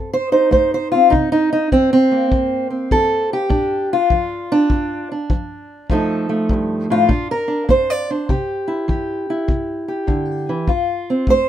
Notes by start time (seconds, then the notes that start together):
Already playing: F2 C4 A4
0.13 C5
0.32 D#4 C5
0.51 A3 C5, kick
0.74 C5
0.92 C4 F4
1.10 C3 D#4, kick
1.32 D#4
1.53 D#4
1.72 E3 C4, kick
1.93 C4
2.11 A#3
2.32 G2, kick
2.70 C4
2.91 E3 A4, kick
3.33 G4
3.49 A#2 D4, kick
3.93 F4
4.10 F3, kick
4.52 D4
4.70 F2, kick
5.12 D4
5.30 F3, kick
5.90 F2 F3 A3 D#4 A4, kick
6.29 A3
6.49 G2, kick
6.90 A2 F4
7.09 A#2 D4, kick
7.31 A#4
7.48 D4
7.69 A#3 C5, kick
7.90 D5
8.11 D4 C5
8.29 C3 G4, kick
8.68 E4
8.88 E3 G4, kick
9.30 E4
9.48 C3, kick
9.88 G4
10.07 D3, kick
10.49 E3
10.67 F2 F4, kick
11.10 C4
11.27 A3 C5, kick